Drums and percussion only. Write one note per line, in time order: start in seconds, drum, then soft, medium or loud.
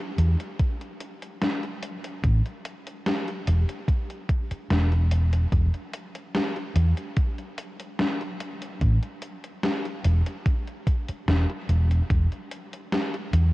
0.18 closed hi-hat medium
0.40 closed hi-hat medium
0.59 kick loud
0.59 closed hi-hat medium
0.81 closed hi-hat soft
1.00 closed hi-hat medium
1.22 closed hi-hat medium
1.42 snare loud
1.42 closed hi-hat medium
1.63 closed hi-hat soft
1.83 closed hi-hat medium
2.04 closed hi-hat medium
2.24 kick loud
2.24 closed hi-hat medium
2.46 closed hi-hat soft
2.65 closed hi-hat medium
2.87 closed hi-hat medium
3.06 snare loud
3.06 closed hi-hat medium
3.28 closed hi-hat soft
3.47 closed hi-hat medium
3.69 closed hi-hat medium
3.88 kick loud
3.88 closed hi-hat medium
4.10 closed hi-hat soft
4.29 kick loud
4.29 closed hi-hat medium
4.51 closed hi-hat medium
4.70 snare loud
4.70 closed hi-hat medium
4.92 closed hi-hat soft
5.11 closed hi-hat medium
5.33 closed hi-hat medium
5.52 kick loud
5.52 closed hi-hat soft
5.74 closed hi-hat soft
5.93 closed hi-hat medium
6.15 closed hi-hat medium
6.35 snare loud
6.35 closed hi-hat medium
6.56 closed hi-hat soft
6.76 closed hi-hat medium
6.97 closed hi-hat medium
7.17 kick loud
7.17 closed hi-hat medium
7.38 closed hi-hat soft
7.58 closed hi-hat medium
7.80 closed hi-hat medium
7.99 snare loud
7.99 closed hi-hat medium
8.21 closed hi-hat soft
8.40 closed hi-hat medium
8.62 closed hi-hat medium
8.81 kick loud
8.81 closed hi-hat soft
9.03 closed hi-hat soft
9.22 closed hi-hat medium
9.44 closed hi-hat soft
9.63 snare loud
9.63 closed hi-hat soft
9.85 closed hi-hat soft
10.04 closed hi-hat medium
10.26 closed hi-hat soft
10.46 kick loud
10.46 closed hi-hat soft
10.68 closed hi-hat soft
10.87 kick loud
10.87 closed hi-hat medium
11.09 closed hi-hat medium
11.28 snare loud
11.28 closed hi-hat soft
11.50 closed hi-hat soft
11.69 closed hi-hat medium
11.91 closed hi-hat soft
12.10 kick loud
12.10 closed hi-hat soft
12.32 closed hi-hat soft
12.51 closed hi-hat medium
12.73 closed hi-hat soft
12.92 snare loud
12.92 closed hi-hat soft
13.14 closed hi-hat soft
13.33 closed hi-hat medium